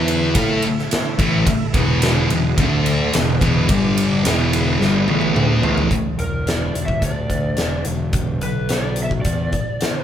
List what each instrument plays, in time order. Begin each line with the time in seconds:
Already playing: picked electric bass E2, distorted electric guitar E3 B3 E4, tonewheel organ B3 E4 B4 E5
0.08 ride
0.34 picked electric bass A2, distorted electric guitar A3 E4 A4, tonewheel organ A#3 F4 A#4 F5, kick, ride
0.52 tonewheel organ A3 E4 A4 E5
0.62 ride
0.78 snare
0.91 snare, ride
1.18 picked electric bass A1, distorted electric guitar A2 E3 A3, kick, ride
1.47 kick, ride
1.74 picked electric bass E1, distorted electric guitar E2 B2 E3, tonewheel organ B3 E4 G#4 B4, kick, ride
2.02 snare, ride
2.30 picked electric bass E1, distorted electric guitar E2 B2, ride
2.57 picked electric bass D2, distorted electric guitar D3 A3 D4, tonewheel organ A3 D4 A4 D5, kick, ride
2.86 ride
3.13 picked electric bass E1, distorted electric guitar E2 B2, tonewheel organ B3 E4 G#4 B4, snare, ride
3.41 picked electric bass E1, distorted electric guitar E2 B2 E3, kick, ride
3.69 picked electric bass G1, distorted electric guitar G2 D3 G3, tonewheel organ G3 D4 G4 D5, kick, ride
3.98 ride
4.23 picked electric bass E1, distorted electric guitar E2 B2 E3, tonewheel organ B3 E4 G#4 B4, snare, ride
4.53 ride
4.80 picked electric bass G1, distorted electric guitar G2 D3 G3, snare
5.06 picked electric bass A1, distorted electric guitar A2 E3 A3, high tom
5.21 high tom
5.33 picked electric bass D2, distorted electric guitar D3 A3 D4, mid tom
5.62 picked electric bass A1, distorted electric guitar A2 E3 A3, floor tom
5.78 floor tom
5.91 kick, closed hi-hat
6.18 picked electric bass E1, lead electric guitar A#4, closed hi-hat
6.47 lead electric guitar D5, snare, closed hi-hat
6.74 picked electric bass E1, closed hi-hat
6.85 lead electric guitar E5, kick
7.01 picked electric bass D2, lead electric guitar D5, kick, closed hi-hat
7.30 kick, closed hi-hat
7.57 picked electric bass E1, snare, closed hi-hat
7.85 picked electric bass E1, closed hi-hat
8.13 kick, closed hi-hat
8.41 picked electric bass B1, lead electric guitar B4, closed hi-hat
8.69 lead electric guitar D5, snare, closed hi-hat
8.96 closed hi-hat
9.03 lead electric guitar E5
9.11 kick
9.22 picked electric bass E2, lead electric guitar D5, kick, closed hi-hat
9.53 kick, closed hi-hat
9.81 snare, closed hi-hat